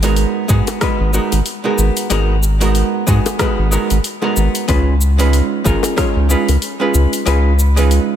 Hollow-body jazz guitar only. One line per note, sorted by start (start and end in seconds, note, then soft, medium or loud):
0.03 0.46 G#3 medium
0.03 0.46 B3 medium
0.03 0.46 D#4 medium
0.03 0.47 F#4 medium
0.03 0.47 A#4 medium
0.48 0.78 G#3 medium
0.48 0.78 B3 medium
0.48 0.78 D#4 medium
0.48 0.79 F#4 medium
0.48 0.79 G#4 medium
0.81 1.10 G#3 medium
0.81 1.11 B3 medium
0.81 1.11 D#4 medium
0.81 1.11 F#4 medium
0.81 1.11 B4 medium
1.13 1.38 G#3 medium
1.13 1.38 B3 medium
1.13 1.39 D#4 medium
1.13 1.39 F#4 medium
1.13 1.39 A#4 medium
1.64 2.07 G#3 medium
1.64 2.07 B3 medium
1.64 2.07 D#4 medium
1.64 2.08 F#4 medium
1.64 2.08 A#4 medium
2.10 2.35 G#3 medium
2.10 2.35 B3 medium
2.10 2.36 D#4 medium
2.10 2.36 F#4 medium
2.10 2.36 A#4 medium
2.60 3.04 G#3 medium
2.60 3.04 B3 medium
2.60 3.04 D#4 medium
2.60 3.04 F#4 medium
2.60 3.05 A#4 medium
3.07 3.36 G#3 medium
3.07 3.36 B3 medium
3.07 3.37 D#4 medium
3.07 3.37 F#4 medium
3.07 3.37 G#4 medium
3.39 3.68 G#3 medium
3.39 3.69 B3 medium
3.39 3.69 D#4 medium
3.39 3.69 F#4 medium
3.39 3.69 B4 medium
3.71 3.96 G#3 medium
3.71 3.96 B3 medium
3.71 3.97 D#4 medium
3.71 3.97 F#4 medium
3.71 3.97 A#4 medium
4.22 4.65 G#3 medium
4.22 4.65 B3 medium
4.22 4.65 D#4 medium
4.22 4.66 F#4 medium
4.22 4.66 A#4 medium
4.68 4.93 G#3 medium
4.68 4.93 C#4 medium
4.68 4.94 D#4 medium
4.68 4.94 F4 medium
4.68 4.94 B4 loud
5.18 5.62 G#3 medium
5.18 5.62 C#4 medium
5.18 5.62 D#4 medium
5.18 5.62 F4 medium
5.18 5.63 B4 medium
5.64 5.94 G#3 medium
5.64 5.94 C#4 medium
5.64 5.94 D#4 medium
5.64 5.95 F4 medium
5.64 5.95 A#4 loud
5.96 6.26 G#3 medium
5.96 6.26 C#4 medium
5.96 6.27 D#4 medium
5.96 6.27 F4 medium
5.96 6.27 C#5 medium
6.29 6.54 G#3 medium
6.29 6.55 C#4 soft
6.29 6.55 D#4 medium
6.29 6.55 F4 medium
6.29 6.55 B4 medium
6.80 7.23 G#3 medium
6.80 7.23 C#4 medium
6.80 7.24 D#4 medium
6.80 7.24 F4 medium
6.80 7.24 B4 medium
7.25 7.51 G#3 medium
7.25 7.51 C#4 medium
7.25 7.51 D#4 medium
7.25 7.52 F4 medium
7.25 7.52 B4 loud
7.76 8.16 G#3 medium
7.76 8.16 C#4 medium
7.76 8.16 D#4 medium
7.76 8.16 F4 medium
7.76 8.16 B4 medium